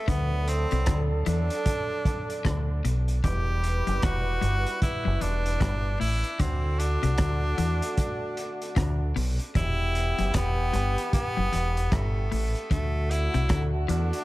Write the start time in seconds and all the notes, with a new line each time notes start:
Already playing: A3
0.08 D2 D3 F#3 B3 D4 A4, kick, closed hi-hat
0.48 C4, closed hi-hat
0.71 C2 C3, closed hi-hat
0.86 D2 D3, kick, cross-stick, closed hi-hat
1.26 E2 E3 D4, closed hi-hat
1.50 closed hi-hat
1.66 kick, closed hi-hat
2.05 kick, closed hi-hat
2.30 closed hi-hat
2.45 D2 D3, kick, cross-stick, closed hi-hat
2.85 B1 B2, closed hi-hat
3.08 closed hi-hat
3.24 E1 E2 G3 E4 G4 B4, kick, closed hi-hat
3.64 closed hi-hat
3.87 F#1 F#2, closed hi-hat
4.02 E1 E2 F#4, kick, cross-stick, closed hi-hat
4.41 G1 G2, closed hi-hat
4.66 closed hi-hat
4.82 E4, kick, closed hi-hat
5.05 F#1 F#2
5.21 E1 E2 D4, closed hi-hat
5.46 closed hi-hat
5.60 G1 G2, kick, cross-stick, closed hi-hat
6.00 A1 A2 E4, open hi-hat
6.24 closed hi-hat
6.39 D2 D3 A3 C4 F#4, kick, closed hi-hat
6.79 D4, closed hi-hat
7.03 C2 C3, closed hi-hat
7.18 D3, kick, cross-stick, closed hi-hat
7.58 E2 E3, closed hi-hat
7.82 closed hi-hat
7.97 kick, closed hi-hat
8.37 closed hi-hat
8.62 closed hi-hat
8.76 D2 D3, kick, cross-stick, closed hi-hat
9.16 B1 B2, open hi-hat
9.39 closed hi-hat
9.55 E1 E2 E3 B3 E4 G4, kick, closed hi-hat
9.95 closed hi-hat
10.18 F#1 F#2, closed hi-hat
10.34 E1 E2 B3, kick, cross-stick, closed hi-hat
10.73 G1 G2, closed hi-hat
10.98 closed hi-hat
11.13 B3, kick, closed hi-hat
11.37 F#1 F#2
11.52 E1 E2, closed hi-hat
11.77 closed hi-hat
11.92 G1 G2 A3, kick, cross-stick, closed hi-hat
12.32 A1 A2, open hi-hat
12.55 closed hi-hat
12.70 D2 D3 A3 F#4, kick, closed hi-hat
13.11 E4, closed hi-hat
13.34 C2 C3, closed hi-hat
13.49 D2 D3, kick, cross-stick, closed hi-hat
13.88 E2 E3 D4, closed hi-hat
14.13 closed hi-hat